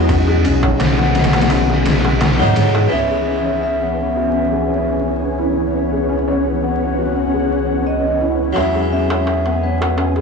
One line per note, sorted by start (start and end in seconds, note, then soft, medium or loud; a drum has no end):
0.00 0.47 E2 medium
0.00 2.87 E3 medium
0.00 2.33 F#3 medium
0.00 2.35 G#3 medium
0.00 0.98 B3 medium
0.00 2.87 B3 medium
0.00 0.09 C#4 medium
0.00 2.93 D#4 medium
0.00 2.93 E4 loud
0.00 1.34 F#4 medium
0.00 0.28 G#4 medium
0.00 2.87 G#4 medium
0.00 2.37 D#5 medium
0.09 0.27 C#4 medium
0.09 kick loud
0.09 ride medium
0.09 darbuka tek medium
0.28 0.43 G#4 medium
0.28 darbuka tek soft
0.44 2.42 B1 medium
0.44 0.61 C#4 loud
0.44 ride medium
0.63 0.73 C#5 medium
0.63 kick medium
0.63 darbuka tek medium
0.80 snare loud
0.80 ride medium
0.80 darbuka tek medium
0.98 1.13 B3 medium
0.98 snare medium
0.98 darbuka tek soft
1.15 1.33 B3 medium
1.15 snare medium
1.15 ride medium
1.24 snare medium
1.24 ride medium
1.33 1.49 F#4 medium
1.33 snare medium
1.33 ride medium
1.33 darbuka tek medium
1.42 snare medium
1.42 ride medium
1.50 1.68 C#4 medium
1.50 ride medium
1.50 darbuka tek medium
1.69 1.84 G#4 medium
1.69 snare soft
1.69 darbuka tek soft
1.85 snare loud
1.85 ride medium
2.05 2.19 G#3 medium
2.05 snare soft
2.05 darbuka tek medium
2.21 snare loud
2.21 ride medium
2.21 darbuka tek medium
2.38 2.55 G#2 medium
2.38 2.89 F#3 medium
2.38 2.90 G#3 medium
2.38 2.91 D#4 loud
2.38 snare soft
2.38 darbuka tek soft
2.56 2.88 G#2 medium
2.56 2.74 G#4 medium
2.56 snare soft
2.56 ride medium
2.75 darbuka tek medium
2.88 8.50 E3 medium
2.88 10.21 E3 medium
2.88 3.09 C#4 medium
2.88 10.21 C#4 medium
2.88 10.21 B4 medium
2.88 8.52 C#5 medium
2.88 5.71 G#5 medium
2.92 8.53 C#2 medium
2.92 8.52 B3 medium
2.92 8.54 C#5 medium
2.92 3.58 E5 medium
3.11 3.25 G#4 medium
3.27 3.44 C#4 medium
3.45 3.55 C#5 medium
3.63 5.35 E5 medium
3.81 3.96 B3 medium
3.98 4.15 B3 medium
4.16 4.31 F#4 medium
4.33 4.50 C#4 medium
4.51 5.20 G#4 medium
5.39 5.72 E4 medium
5.74 5.92 C#4 medium
5.74 8.54 F#5 medium
5.92 6.07 G#4 medium
6.09 6.26 C#4 medium
6.28 6.37 C#5 medium
6.63 6.78 B3 medium
6.79 6.97 B3 medium
6.98 7.13 F#4 medium
7.15 7.33 C#4 medium
7.33 8.02 G#4 medium
7.87 8.59 D#5 medium
8.21 8.54 E4 medium
8.53 10.21 F#3 medium
8.53 10.21 G#3 medium
8.53 8.74 C#4 medium
8.53 10.21 G#5 medium
8.53 darbuka tek medium
8.57 10.21 E2 medium
8.57 10.21 E4 medium
8.57 8.73 E5 medium
8.75 8.90 G#4 medium
8.75 darbuka tek soft
8.92 9.08 C#4 medium
8.92 9.65 E5 medium
9.10 9.20 C#5 medium
9.10 darbuka tek medium
9.27 darbuka tek medium
9.46 9.60 B3 medium
9.46 darbuka tek soft
9.62 9.80 B3 medium
9.62 10.21 B4 medium
9.81 9.96 F#4 medium
9.81 darbuka tek medium
9.97 10.15 C#4 medium
9.97 darbuka tek medium
10.16 10.21 G#4 medium
10.16 darbuka tek soft